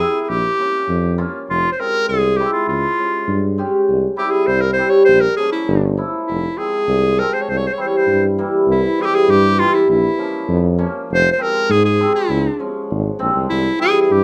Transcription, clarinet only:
0.00 0.21 G#4 loud
0.21 0.30 G#4 medium
0.29 1.18 G4 loud
1.50 1.70 F4 loud
1.72 1.81 C5 medium
1.80 2.08 A#4 loud
2.08 2.39 G#4 medium
2.37 2.52 G4 loud
2.52 2.67 F4 medium
2.68 3.54 F4 medium
4.18 4.33 G4 medium
4.31 4.48 G#4 medium
4.47 4.63 C5 loud
4.61 4.73 A#4 medium
4.73 4.91 C5 loud
4.90 5.04 C#5 loud
5.05 5.22 C5 loud
5.21 5.36 A#4 loud
5.36 5.51 G#4 medium
5.52 5.95 E4 medium
6.27 6.59 E4 medium
6.58 7.20 G#4 medium
7.19 7.35 A#4 medium
7.34 7.43 C5 medium
7.41 7.51 C#5 medium
7.49 7.59 C5 medium
7.57 7.68 C#5 medium
7.66 7.75 C5 medium
7.73 7.83 C#5 medium
7.81 7.89 C5 medium
7.87 7.98 C#5 medium
7.97 8.24 C5 medium
8.71 9.03 E4 medium
9.01 9.07 G#4 loud
9.06 9.16 G4 loud
9.15 9.32 G#4 loud
9.30 9.61 G4 loud
9.59 9.76 F4 loud
9.74 9.89 E4 medium
9.90 10.76 E4 medium
11.13 11.31 C5 loud
11.32 11.44 C5 medium
11.42 11.72 A#4 loud
11.71 11.84 G#4 loud
11.85 12.13 G#4 medium
12.15 12.71 E4 medium
13.50 13.78 E4 loud
13.81 14.01 G#4 loud
14.02 14.14 G#4 medium
14.12 14.24 G4 medium

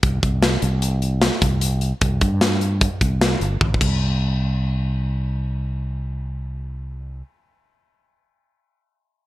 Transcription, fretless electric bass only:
0.03 0.19 C2 medium
0.23 0.56 C2 medium
0.63 1.28 C2 medium
1.42 1.91 C2 medium
2.02 2.18 C2 loud
2.22 2.87 G2 medium
3.01 3.34 C2 medium
3.40 3.58 G1 medium
3.61 3.79 A1 medium
3.81 7.21 C2 medium

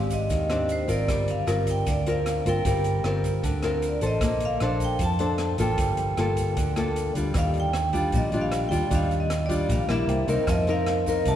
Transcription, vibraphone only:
0.00 0.13 F5 medium
0.13 0.72 D#5 medium
0.72 0.91 C5 medium
0.92 1.31 D5 medium
1.30 1.66 F5 medium
1.71 1.89 G5 medium
1.90 2.08 D5 medium
2.10 2.48 F5 medium
2.49 3.02 G5 medium
3.88 3.96 D5 medium
4.07 4.45 D#5 medium
4.45 4.84 F5 medium
4.84 5.03 G5 medium
5.04 5.62 A5 medium
5.61 7.13 G5 medium
7.39 7.55 F5 medium
7.60 8.18 G5 medium
8.17 8.42 D#5 medium
8.41 8.67 F5 medium
8.69 8.94 G5 medium
8.95 9.20 F5 medium
9.20 9.46 D#5 medium
9.46 9.72 D5 medium
9.72 9.89 F5 medium
9.92 10.27 E5 medium
10.50 10.69 D#5 medium
10.70 11.29 F5 medium
11.28 11.36 A5 loud

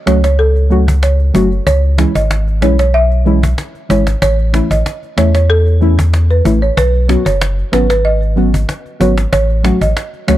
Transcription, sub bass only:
0.07 1.31 C#2 loud
1.35 1.60 F#1 medium
1.67 2.06 C#2 loud
2.15 2.64 G#1 medium
2.62 3.54 B1 loud
3.90 4.15 G#1 medium
4.22 4.61 A1 loud
4.71 4.83 A1 medium
5.18 6.41 E2 loud
6.45 6.71 A1 medium
6.77 7.16 B1 loud
7.26 7.63 F#1 medium
7.73 8.65 G#1 medium
9.01 9.26 G#1 medium
9.33 9.72 A1 loud
9.81 9.93 A1 loud
10.29 10.38 C#2 loud

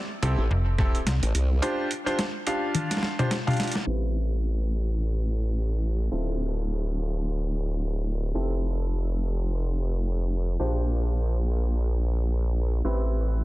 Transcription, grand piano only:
0.22 0.40 C4 medium
0.22 0.40 E4 medium
0.22 0.40 G4 medium
0.22 0.40 A4 loud
0.79 0.96 C4 medium
0.79 0.96 E4 medium
0.79 0.96 G4 medium
0.79 0.96 A4 loud
1.62 1.88 D4 medium
1.62 1.88 F4 medium
1.62 1.88 G4 medium
1.62 1.88 C5 medium
2.06 2.20 D4 medium
2.06 2.20 F4 medium
2.06 2.20 G4 medium
2.06 2.20 C5 loud
2.47 3.16 D4 medium
2.47 3.16 F4 medium
2.47 3.16 G4 medium
2.47 3.16 F5 medium
3.19 3.33 D4 medium
3.19 3.33 F4 medium
3.19 3.33 G4 medium
3.19 3.33 C5 medium
3.47 3.71 D4 medium
3.47 3.71 F4 medium
3.47 3.71 G4 medium
3.47 3.71 F5 medium
3.87 6.08 C4 medium
3.87 6.08 E4 medium
3.87 6.08 G4 medium
3.87 6.08 B4 medium
6.12 8.33 C4 medium
6.12 8.33 E4 medium
6.12 8.33 F4 medium
6.12 8.33 A4 medium
8.35 10.57 C4 medium
8.35 10.57 E4 medium
8.35 10.57 G4 medium
8.35 10.57 A4 medium
10.60 12.81 D4 medium
10.60 12.81 F4 medium
10.60 12.81 G4 medium
10.60 12.81 C5 medium
12.85 13.44 C4 medium
12.85 13.44 E4 medium
12.85 13.44 G4 medium
12.85 13.44 B4 medium

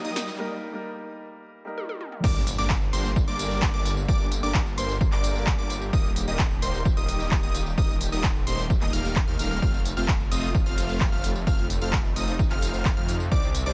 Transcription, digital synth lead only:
0.05 0.22 D#6 medium
2.24 2.42 D6 loud
2.58 2.76 D6 medium
2.93 3.11 C6 loud
3.28 3.71 D6 loud
3.74 3.92 D6 medium
4.08 4.26 D6 loud
4.43 4.61 D6 medium
4.78 4.96 C6 medium
5.12 5.56 D6 loud
5.59 5.76 D6 medium
5.93 6.11 D#6 loud
6.28 6.46 D#6 medium
6.62 6.80 C6 loud
6.97 7.40 D#6 loud
7.43 7.61 D#6 medium
7.78 7.96 D#6 loud
8.12 8.30 D#6 medium
8.47 8.65 C6 loud
8.82 8.91 D#6 loud
8.93 9.22 F6 loud
9.28 9.37 F6 medium
9.39 9.60 F6 loud
9.62 9.80 F6 loud
9.97 10.15 F6 medium
10.31 10.49 D#6 loud
10.66 11.10 F6 loud
11.12 11.30 F6 medium
11.47 11.65 F6 loud
11.82 11.99 F6 medium
12.16 12.34 D#6 medium
12.51 12.94 F6 loud
12.97 13.15 F6 medium
13.32 13.49 D6 loud
13.66 13.73 D6 medium

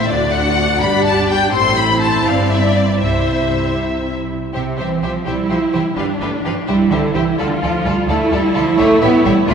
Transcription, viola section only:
0.00 0.11 C4 medium
0.00 0.10 E4 medium
0.10 0.81 D4 medium
0.10 0.82 F#4 medium
0.82 1.53 D4 medium
0.82 1.54 G4 medium
1.54 3.01 C4 medium
1.54 2.98 E4 medium
3.01 4.31 E4 soft
4.54 5.22 C4 medium
5.27 5.97 E4 medium
5.98 6.67 D4 medium
6.68 7.38 E4 medium
7.39 8.09 F4 medium
8.09 9.46 E4 medium
9.49 9.54 D4 medium

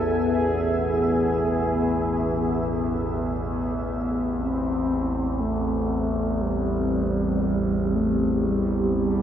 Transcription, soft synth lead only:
0.00 0.29 A4 loud
0.29 3.85 G#4 medium
4.38 5.42 C4 loud
5.40 6.43 A3 medium
6.41 7.97 G3 loud
7.95 8.45 A3 medium
8.46 8.93 G3 medium
8.95 9.22 G3 medium

